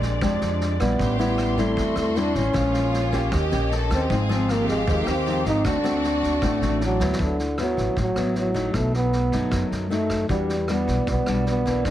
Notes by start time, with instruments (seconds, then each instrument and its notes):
Already playing: upright bass A#1, nylon-string guitar A#2 G#3 D4 G4, string section G#3 C4 D4 D5
0.02 kick, snare
0.21 upright bass F2, nylon-string guitar F3 G#3 D4 G4, kick, cross-stick, snare
0.41 upright bass F2, snare
0.61 snare
0.80 upright bass A#1, nylon-string guitar G3 E4, trombone B3, kick, cross-stick, snare
0.99 upright bass A1, nylon-string guitar A2, string section A3 C6, violin section G4, kick, snare
1.19 nylon-string guitar G3 E4, trombone B3, snare
1.38 cross-stick, snare
1.57 nylon-string guitar G3 C4 E4, trombone A3, kick, snare
1.77 upright bass E2, nylon-string guitar E3, violin section F#4, kick, snare
1.96 upright bass E2, trombone A3, cross-stick, snare
2.16 nylon-string guitar G3 C4 E4, trombone D4, snare
2.35 upright bass A1, trombone C#4, kick, snare
2.53 upright bass A#1, nylon-string guitar A#2 F3 G#3 C#4, string section A#3 G#4 C#5, violin section F4, kick, cross-stick, snare
2.74 snare
2.93 snare
3.12 nylon-string guitar A#3 C#4 G4, kick, snare
3.32 upright bass D#2, nylon-string guitar D#3, string section C#4 G4 D#5, violin section G4, kick, cross-stick, snare
3.51 upright bass A#1, nylon-string guitar A#3 C#4 G4, snare
3.71 violin section A4, snare
3.90 upright bass D#2, trombone C4, kick, cross-stick, snare
4.03 violin section G4
4.10 upright bass G#1, nylon-string guitar G#2 F3 C4 D#4, string section G#3 C4 F5, violin section G#4, kick, snare
4.29 nylon-string guitar F3 C4 D#4, trombone C4, snare
4.49 trombone A#3, violin section G4, cross-stick, snare
4.68 trombone G#3, kick, snare
4.87 upright bass D#2, nylon-string guitar D#3 F3 C4 D#4, trombone G#3, kick, snare
5.07 upright bass D#2, trombone C4, cross-stick, snare
5.26 nylon-string guitar F3 C4 D#4, snare
5.45 upright bass G#1, trombone D#4, kick, snare
5.64 upright bass D2, nylon-string guitar D3 A3 C4 F#4, trombone D4, string section F#4 D5, violin section F#4, kick, cross-stick, snare
5.84 nylon-string guitar A3 C4 F#4, snare
6.04 snare
6.23 kick, snare
6.42 upright bass A1, nylon-string guitar A2 A3 C4 F#4, kick, cross-stick, snare
6.61 upright bass A1, snare
6.81 violin section D4, snare
6.85 trombone F#3
7.00 upright bass D2, nylon-string guitar F#3 B3 E4, snare
7.13 snare
7.19 upright bass D2, nylon-string guitar D3, trombone D3, kick, snare
7.39 snare
7.58 nylon-string guitar F#3 B3 E4, trombone F#3, cross-stick, snare
7.77 upright bass A1, kick, snare
7.97 upright bass A1, nylon-string guitar A2, trombone F#3, kick, snare
8.16 upright bass A1, nylon-string guitar F#3 B3 E4, cross-stick, snare
8.35 trombone F#3, snare
8.54 nylon-string guitar F#3 A3 D#4, kick, snare
8.74 upright bass B1, nylon-string guitar B2, trombone A3, kick, cross-stick, snare
8.94 trombone B3, snare
9.12 snare
9.32 upright bass F#2, nylon-string guitar F#3 A3 D#4, kick, snare
9.51 nylon-string guitar F#2, upright bass F#2, kick, cross-stick, snare
9.71 upright bass F#2, snare
9.90 nylon-string guitar F#3 A3 D#4, trombone A3, snare
10.10 kick, cross-stick, snare
10.29 upright bass E2, nylon-string guitar E3 G3 D4 F#4, trombone G3, kick, snare
10.49 snare
10.68 nylon-string guitar G3 D4 F#4, trombone B3, cross-stick, snare
10.87 upright bass B1, kick, snare
11.06 upright bass B1, nylon-string guitar B2, trombone B3, kick, snare
11.26 upright bass B1, nylon-string guitar G3 D4 F#4, cross-stick, snare
11.46 trombone B3, snare
11.66 nylon-string guitar E3 A#3 D4, kick, snare
11.85 upright bass F#2, nylon-string guitar F#2, trombone D4, kick, cross-stick, snare